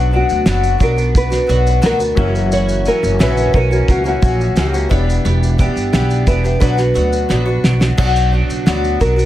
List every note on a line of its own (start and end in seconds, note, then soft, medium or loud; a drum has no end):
0.00 0.20 B1 loud
0.00 0.12 B2 medium
0.00 0.10 F#3 medium
0.00 0.11 B3 medium
0.00 0.46 B3 medium
0.00 2.15 B3 medium
0.00 0.12 D4 medium
0.00 2.13 D4 medium
0.00 0.13 F#4 medium
0.00 2.14 F#4 medium
0.11 0.45 F#3 medium
0.11 0.46 B3 medium
0.11 0.46 D4 medium
0.11 0.46 F#4 medium
0.16 0.85 F#4 medium
0.29 0.44 D2 medium
0.29 shaker medium
0.46 0.74 F#1 medium
0.46 0.80 B2 medium
0.46 0.77 F#3 medium
0.46 0.78 B3 medium
0.46 0.79 D4 medium
0.46 0.80 F#4 medium
0.46 snare loud
0.46 shaker medium
0.63 shaker soft
0.78 1.36 B1 medium
0.78 0.97 F#3 medium
0.78 0.97 B3 medium
0.78 0.97 D4 medium
0.78 0.95 F#4 medium
0.78 kick medium
0.78 shaker soft
0.83 1.17 A#4 medium
0.96 1.32 B3 soft
0.96 1.31 D4 soft
0.96 1.29 F#4 medium
0.96 shaker soft
1.15 1.84 B3 medium
1.15 1.80 B4 loud
1.15 kick loud
1.15 shaker medium
1.30 1.47 B3 soft
1.30 1.48 D4 medium
1.30 1.48 F#4 medium
1.30 snare soft
1.30 shaker medium
1.47 1.77 B1 loud
1.47 1.81 F#3 medium
1.47 1.82 B3 medium
1.47 1.82 D4 medium
1.47 1.83 F#4 medium
1.47 shaker medium
1.67 shaker medium
1.82 2.11 D2 medium
1.82 1.99 B2 medium
1.82 2.00 F#3 medium
1.82 2.00 B3 medium
1.82 2.00 D4 medium
1.82 1.98 F#4 medium
1.82 snare loud
1.82 shaker medium
1.86 2.32 A#4 loud
1.99 2.17 B3 soft
1.99 2.18 D4 medium
1.99 2.17 F#4 medium
1.99 shaker medium
2.15 2.87 F#1 loud
2.15 2.85 F#2 medium
2.15 2.85 C#3 medium
2.15 2.85 E3 medium
2.15 4.86 F#3 medium
2.15 2.85 A#3 medium
2.15 4.86 C#4 medium
2.15 2.86 C#4 medium
2.15 4.87 E4 medium
2.15 2.86 F#4 medium
2.15 4.87 F#5 medium
2.15 kick loud
2.19 4.88 C#5 medium
2.35 shaker medium
2.52 4.98 E3 medium
2.52 4.24 F#4 medium
2.52 2.87 C#5 loud
2.52 shaker medium
2.69 shaker medium
2.85 3.19 E3 medium
2.85 3.20 A#3 medium
2.85 3.20 C#4 medium
2.85 3.20 F#4 medium
2.85 3.22 A#4 loud
2.85 shaker soft
3.03 3.17 F#1 medium
3.03 shaker medium
3.19 3.48 A#1 loud
3.19 3.54 F#2 medium
3.19 3.54 C#3 medium
3.19 3.52 E3 medium
3.19 3.54 C#4 loud
3.19 3.55 F#4 medium
3.19 3.55 B4 medium
3.19 snare loud
3.19 shaker medium
3.37 shaker soft
3.53 3.82 B1 loud
3.53 3.71 E3 medium
3.53 3.72 A#3 medium
3.53 3.71 C#4 medium
3.53 3.70 F#4 medium
3.53 3.90 A#4 medium
3.53 kick medium
3.71 4.06 E3 soft
3.71 4.05 A#3 medium
3.71 4.04 C#4 medium
3.71 4.03 F#4 medium
3.71 shaker medium
3.88 4.16 C#2 loud
3.88 4.56 A#3 medium
3.88 4.07 F#4 medium
3.88 kick medium
3.88 shaker medium
4.04 4.20 E3 soft
4.04 4.22 A#3 soft
4.04 4.23 C#4 medium
4.04 4.22 F#4 medium
4.04 4.59 F#4 medium
4.04 shaker medium
4.22 4.50 A#1 loud
4.22 4.56 E3 medium
4.22 4.57 A#3 medium
4.22 4.57 C#4 medium
4.22 4.58 F#4 medium
4.22 kick loud
4.22 shaker medium
4.41 shaker soft
4.55 4.84 C#2 medium
4.55 4.74 F#2 medium
4.55 4.74 C#3 medium
4.55 4.74 E3 medium
4.55 4.74 A#3 medium
4.55 4.73 C#4 medium
4.55 4.72 F#4 medium
4.55 5.06 G4 medium
4.55 snare loud
4.55 shaker medium
4.73 4.88 E3 soft
4.73 4.90 A#3 medium
4.73 4.90 C#4 medium
4.73 4.91 F#4 medium
4.73 shaker medium
4.89 5.19 E1 medium
4.89 5.57 E3 medium
4.89 6.57 B3 medium
4.89 5.59 B3 medium
4.89 6.58 D4 medium
4.89 5.60 D4 medium
4.89 6.58 E4 medium
4.89 5.59 G4 medium
4.89 6.59 G4 medium
4.89 4.98 C#5 medium
4.89 kick loud
4.89 shaker medium
5.00 6.63 D5 medium
5.10 shaker medium
5.25 5.67 E1 loud
5.25 5.93 B3 medium
5.25 6.69 G4 medium
5.25 shaker medium
5.43 shaker soft
5.58 5.92 E3 medium
5.58 5.92 B3 medium
5.58 5.93 D4 medium
5.58 5.94 G4 medium
5.58 kick medium
5.58 shaker medium
5.76 5.90 G1 medium
5.76 shaker medium
5.93 6.21 B1 medium
5.93 6.25 E3 medium
5.93 6.27 B3 medium
5.93 6.27 D4 medium
5.93 6.26 G4 medium
5.93 6.28 G4 medium
5.93 snare loud
5.93 shaker medium
6.10 shaker soft
6.27 6.55 E1 medium
6.27 6.44 E3 medium
6.27 6.45 B3 medium
6.27 6.44 D4 medium
6.27 6.43 G4 medium
6.27 6.59 B4 medium
6.27 kick medium
6.27 shaker medium
6.44 6.60 B3 soft
6.44 6.61 D4 soft
6.44 6.61 G4 medium
6.44 shaker soft
6.60 6.90 B1 loud
6.60 6.78 B2 medium
6.60 6.79 F#3 medium
6.60 6.79 B3 medium
6.60 7.95 D4 medium
6.60 6.78 D4 medium
6.60 7.96 F#4 medium
6.60 6.76 F#4 medium
6.60 7.60 B4 loud
6.60 7.97 B4 medium
6.60 kick loud
6.60 shaker medium
6.77 6.94 B3 soft
6.77 6.95 D4 medium
6.77 6.95 F#4 medium
6.77 snare soft
6.77 shaker medium
6.94 7.24 D2 medium
6.94 7.29 F#3 medium
6.94 7.29 B3 medium
6.94 7.29 D4 medium
6.94 7.30 F#4 medium
6.94 shaker medium
7.13 shaker medium
7.29 7.58 A#1 medium
7.29 7.47 B2 medium
7.29 7.47 F#3 medium
7.29 7.47 B3 medium
7.29 7.46 D4 medium
7.29 7.44 F#4 medium
7.29 snare medium
7.46 7.81 B3 soft
7.46 7.81 D4 medium
7.46 7.79 F#4 medium
7.64 7.92 B1 medium
7.64 8.32 D4 medium
7.64 snare loud
7.80 7.98 B3 soft
7.80 7.97 D4 medium
7.80 7.98 F#4 medium
7.80 snare loud
7.97 8.40 B1 loud
7.97 8.32 B2 medium
7.97 8.30 F#3 medium
7.97 8.31 B3 medium
7.97 8.32 D4 loud
7.97 8.33 F#4 medium
7.97 kick loud
7.97 crash loud
8.16 shaker medium
8.31 8.66 F#3 medium
8.31 8.66 B3 medium
8.31 8.67 D4 medium
8.31 8.67 F#4 medium
8.49 8.63 C#2 medium
8.49 shaker medium
8.66 8.95 D2 medium
8.66 9.01 B2 medium
8.66 8.98 F#3 medium
8.66 8.99 B3 medium
8.66 9.00 D4 medium
8.66 9.02 F#4 medium
8.66 9.01 F#4 medium
8.66 snare loud
8.66 shaker medium
8.84 shaker soft
8.99 9.25 B1 medium
8.99 9.17 F#3 medium
8.99 9.18 B3 medium
8.99 9.17 D4 medium
8.99 9.15 F#4 medium
8.99 9.25 A#4 medium
8.99 kick medium
8.99 shaker soft
9.16 9.25 B3 soft
9.16 9.25 D4 medium
9.16 9.25 F#4 medium
9.16 shaker soft